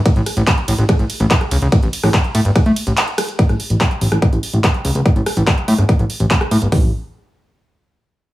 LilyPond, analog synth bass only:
\new Staff \with { instrumentName = "Analog synth bass" } { \clef bass \time 4/4 \tempo 4 = 144 r16 a,,16 r16 a,,16 r8 a,,16 a,,16 r16 a,,16 r16 a,,16 r8 cis,16 cis,16 | r16 a,,16 r16 a,,16 r8 a,16 g,,16 r16 a,16 r16 a,,16 r4 | r16 a,,16 r16 a,,16 r8 a,,16 a,,16 r16 a,,16 r16 a,,16 r8 cis,16 cis,16 | r16 a,,16 r16 a,,16 r8 a,16 g,,16 r16 a,,16 r16 a,,16 r8 a,16 g,,16 |
a,,8 r2. r8 | }